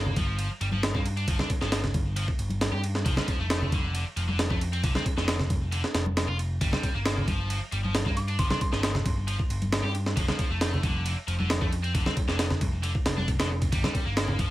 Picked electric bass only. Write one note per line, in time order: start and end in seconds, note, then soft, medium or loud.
0.00 0.13 G1 medium
0.16 0.47 G1 medium
0.61 0.91 G1 medium
0.95 1.24 G2 medium
1.28 1.37 G1 medium
1.61 1.91 G1 medium
1.94 2.24 G1 medium
2.39 2.69 G1 medium
2.73 3.02 G2 medium
3.06 3.15 F1 medium
3.39 3.69 F1 medium
3.72 4.02 F1 medium
4.17 4.47 F1 medium
4.50 4.80 F2 medium
4.83 4.93 F1 medium
5.17 5.47 F1 medium
5.50 5.80 F1 medium
5.94 6.25 F1 medium
6.28 6.58 F1 medium
6.61 6.70 G1 medium
6.95 7.24 G1 medium
7.28 7.58 G1 medium
7.72 8.02 G1 medium
8.06 8.36 G2 medium
8.39 8.48 G1 medium
8.73 9.02 G1 medium
9.06 9.36 G1 medium
9.50 9.80 G1 medium
9.84 10.13 G2 medium
10.17 10.26 F1 medium
10.50 10.80 F1 medium
10.83 11.13 F1 medium
11.28 11.58 F1 medium
11.62 11.91 F2 medium
11.95 12.04 F1 medium
12.28 12.58 F1 medium
12.61 12.91 F1 medium
13.05 13.36 F1 loud
13.39 13.69 F1 medium
13.72 13.82 G1 medium
14.06 14.36 G1 medium
14.39 14.50 G1 medium